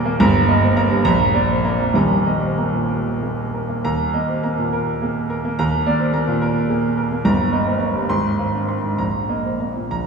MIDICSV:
0, 0, Header, 1, 2, 480
1, 0, Start_track
1, 0, Key_signature, -3, "major"
1, 0, Tempo, 572519
1, 162, Time_signature, 6, 3, 24, 8
1, 1121, Tempo, 624350
1, 3041, Tempo, 591716
1, 3521, Tempo, 563910
1, 6401, Tempo, 601805
1, 8202, End_track
2, 0, Start_track
2, 0, Title_t, "Grand piano"
2, 0, Program_c, 0, 0
2, 0, Control_c, 0, 64, 127
2, 0, Note_on_c, 0, 27, 97
2, 0, Note_on_c, 0, 39, 106
2, 0, Note_on_c, 0, 46, 92
2, 0, Note_on_c, 0, 58, 93
2, 0, Note_on_c, 0, 60, 75
2, 0, Note_on_c, 0, 68, 77
2, 0, Note_on_c, 0, 70, 99
2, 0, Note_on_c, 0, 74, 94
2, 0, Note_on_c, 0, 82, 95
2, 46, Note_off_c, 0, 58, 0
2, 46, Note_on_c, 0, 58, 91
2, 124, Note_off_c, 0, 27, 0
2, 129, Note_off_c, 0, 39, 0
2, 162, Note_off_c, 0, 70, 0
2, 164, Note_off_c, 0, 58, 0
2, 167, Note_off_c, 0, 82, 0
2, 167, Note_on_c, 0, 82, 127
2, 168, Note_on_c, 0, 31, 125
2, 175, Control_c, 0, 64, 0
2, 179, Note_off_c, 0, 74, 0
2, 180, Note_off_c, 0, 60, 0
2, 183, Note_off_c, 0, 68, 0
2, 184, Note_off_c, 0, 46, 0
2, 332, Control_c, 0, 64, 127
2, 406, Note_on_c, 0, 75, 92
2, 407, Note_on_c, 0, 58, 85
2, 528, Note_on_c, 0, 60, 80
2, 544, Note_off_c, 0, 82, 0
2, 592, Note_off_c, 0, 58, 0
2, 641, Note_off_c, 0, 60, 0
2, 643, Note_on_c, 0, 82, 101
2, 644, Note_on_c, 0, 58, 91
2, 761, Note_on_c, 0, 43, 82
2, 781, Note_off_c, 0, 75, 0
2, 831, Note_off_c, 0, 58, 0
2, 857, Note_off_c, 0, 31, 0
2, 866, Note_off_c, 0, 82, 0
2, 878, Note_off_c, 0, 43, 0
2, 879, Note_on_c, 0, 34, 124
2, 879, Note_on_c, 0, 82, 127
2, 892, Control_c, 0, 64, 0
2, 1044, Control_c, 0, 64, 127
2, 1123, Note_on_c, 0, 74, 80
2, 1126, Note_on_c, 0, 58, 72
2, 1242, Note_on_c, 0, 60, 73
2, 1263, Note_off_c, 0, 82, 0
2, 1310, Note_off_c, 0, 58, 0
2, 1357, Note_off_c, 0, 60, 0
2, 1357, Note_on_c, 0, 58, 74
2, 1357, Note_on_c, 0, 82, 82
2, 1478, Note_on_c, 0, 41, 66
2, 1498, Note_off_c, 0, 74, 0
2, 1546, Note_off_c, 0, 58, 0
2, 1574, Note_off_c, 0, 34, 0
2, 1583, Note_off_c, 0, 82, 0
2, 1585, Note_on_c, 0, 27, 89
2, 1595, Note_off_c, 0, 41, 0
2, 1595, Note_on_c, 0, 39, 88
2, 1595, Note_on_c, 0, 82, 95
2, 1609, Control_c, 0, 64, 0
2, 1751, Control_c, 0, 64, 127
2, 1834, Note_on_c, 0, 58, 67
2, 1834, Note_on_c, 0, 75, 73
2, 1953, Note_on_c, 0, 60, 61
2, 1977, Note_off_c, 0, 82, 0
2, 2025, Note_off_c, 0, 58, 0
2, 2073, Note_off_c, 0, 60, 0
2, 2074, Note_on_c, 0, 82, 68
2, 2077, Note_on_c, 0, 58, 62
2, 2193, Note_on_c, 0, 46, 60
2, 2220, Note_off_c, 0, 75, 0
2, 2270, Note_off_c, 0, 58, 0
2, 2313, Note_on_c, 0, 70, 71
2, 2390, Note_off_c, 0, 46, 0
2, 2465, Note_off_c, 0, 82, 0
2, 2566, Note_on_c, 0, 68, 49
2, 2567, Note_on_c, 0, 58, 59
2, 2708, Note_off_c, 0, 70, 0
2, 2760, Note_off_c, 0, 58, 0
2, 2809, Note_off_c, 0, 68, 0
2, 2814, Note_on_c, 0, 70, 65
2, 2929, Note_on_c, 0, 58, 60
2, 3007, Note_off_c, 0, 27, 0
2, 3012, Note_off_c, 0, 39, 0
2, 3044, Note_off_c, 0, 58, 0
2, 3046, Note_off_c, 0, 70, 0
2, 3048, Note_on_c, 0, 39, 88
2, 3050, Note_on_c, 0, 82, 109
2, 3059, Control_c, 0, 64, 0
2, 3208, Control_c, 0, 64, 127
2, 3288, Note_on_c, 0, 75, 76
2, 3289, Note_on_c, 0, 58, 63
2, 3402, Note_on_c, 0, 60, 66
2, 3430, Note_off_c, 0, 82, 0
2, 3478, Note_off_c, 0, 58, 0
2, 3522, Note_off_c, 0, 60, 0
2, 3527, Note_on_c, 0, 58, 73
2, 3527, Note_on_c, 0, 82, 78
2, 3655, Note_on_c, 0, 46, 67
2, 3676, Note_off_c, 0, 75, 0
2, 3725, Note_off_c, 0, 58, 0
2, 3779, Note_on_c, 0, 70, 87
2, 3850, Note_off_c, 0, 46, 0
2, 3923, Note_off_c, 0, 82, 0
2, 4025, Note_on_c, 0, 58, 73
2, 4026, Note_on_c, 0, 68, 59
2, 4169, Note_off_c, 0, 70, 0
2, 4217, Note_off_c, 0, 58, 0
2, 4264, Note_on_c, 0, 70, 83
2, 4266, Note_off_c, 0, 68, 0
2, 4389, Note_on_c, 0, 58, 77
2, 4470, Note_off_c, 0, 39, 0
2, 4501, Note_off_c, 0, 70, 0
2, 4504, Note_off_c, 0, 58, 0
2, 4510, Note_on_c, 0, 82, 116
2, 4511, Note_on_c, 0, 39, 89
2, 4517, Control_c, 0, 64, 0
2, 4655, Control_c, 0, 64, 127
2, 4745, Note_on_c, 0, 58, 85
2, 4746, Note_on_c, 0, 74, 89
2, 4859, Note_on_c, 0, 60, 79
2, 4882, Note_off_c, 0, 82, 0
2, 4929, Note_off_c, 0, 58, 0
2, 4975, Note_off_c, 0, 60, 0
2, 4975, Note_on_c, 0, 82, 90
2, 4978, Note_on_c, 0, 58, 76
2, 5096, Note_on_c, 0, 46, 83
2, 5120, Note_off_c, 0, 74, 0
2, 5166, Note_off_c, 0, 58, 0
2, 5215, Note_on_c, 0, 70, 91
2, 5286, Note_off_c, 0, 46, 0
2, 5357, Note_off_c, 0, 82, 0
2, 5455, Note_on_c, 0, 68, 70
2, 5456, Note_on_c, 0, 58, 70
2, 5597, Note_off_c, 0, 70, 0
2, 5645, Note_off_c, 0, 58, 0
2, 5691, Note_off_c, 0, 68, 0
2, 5691, Note_on_c, 0, 70, 84
2, 5809, Note_on_c, 0, 58, 70
2, 5896, Note_off_c, 0, 39, 0
2, 5924, Note_on_c, 0, 31, 101
2, 5924, Note_on_c, 0, 82, 114
2, 5926, Note_off_c, 0, 58, 0
2, 5926, Note_off_c, 0, 70, 0
2, 5941, Control_c, 0, 64, 0
2, 6091, Control_c, 0, 64, 127
2, 6159, Note_on_c, 0, 58, 72
2, 6159, Note_on_c, 0, 75, 79
2, 6278, Note_on_c, 0, 60, 72
2, 6305, Note_off_c, 0, 82, 0
2, 6353, Note_off_c, 0, 58, 0
2, 6394, Note_on_c, 0, 58, 66
2, 6394, Note_on_c, 0, 82, 72
2, 6401, Note_off_c, 0, 60, 0
2, 6517, Note_on_c, 0, 43, 68
2, 6539, Note_off_c, 0, 75, 0
2, 6582, Note_off_c, 0, 58, 0
2, 6611, Note_off_c, 0, 31, 0
2, 6628, Note_off_c, 0, 82, 0
2, 6628, Note_on_c, 0, 32, 91
2, 6629, Note_on_c, 0, 84, 100
2, 6632, Note_off_c, 0, 43, 0
2, 6645, Control_c, 0, 64, 0
2, 6765, Control_c, 0, 64, 127
2, 6862, Note_on_c, 0, 60, 59
2, 6863, Note_on_c, 0, 77, 61
2, 6975, Note_on_c, 0, 62, 60
2, 7006, Note_off_c, 0, 84, 0
2, 7054, Note_off_c, 0, 60, 0
2, 7099, Note_off_c, 0, 62, 0
2, 7100, Note_on_c, 0, 60, 61
2, 7100, Note_on_c, 0, 84, 71
2, 7220, Note_on_c, 0, 44, 58
2, 7246, Note_off_c, 0, 77, 0
2, 7295, Note_off_c, 0, 60, 0
2, 7322, Note_off_c, 0, 32, 0
2, 7337, Note_on_c, 0, 82, 91
2, 7338, Note_on_c, 0, 34, 75
2, 7343, Note_off_c, 0, 44, 0
2, 7343, Note_off_c, 0, 84, 0
2, 7360, Control_c, 0, 64, 0
2, 7513, Control_c, 0, 64, 127
2, 7583, Note_on_c, 0, 58, 64
2, 7585, Note_on_c, 0, 75, 66
2, 7708, Note_on_c, 0, 60, 55
2, 7732, Note_off_c, 0, 82, 0
2, 7782, Note_off_c, 0, 58, 0
2, 7830, Note_on_c, 0, 58, 60
2, 7830, Note_on_c, 0, 82, 63
2, 7832, Note_off_c, 0, 60, 0
2, 7957, Note_on_c, 0, 46, 57
2, 7979, Note_off_c, 0, 75, 0
2, 8029, Note_off_c, 0, 58, 0
2, 8054, Note_off_c, 0, 34, 0
2, 8065, Note_off_c, 0, 82, 0
2, 8075, Note_on_c, 0, 34, 76
2, 8076, Note_on_c, 0, 82, 93
2, 8080, Note_off_c, 0, 46, 0
2, 8094, Control_c, 0, 64, 0
2, 8202, Note_off_c, 0, 34, 0
2, 8202, Note_off_c, 0, 82, 0
2, 8202, End_track
0, 0, End_of_file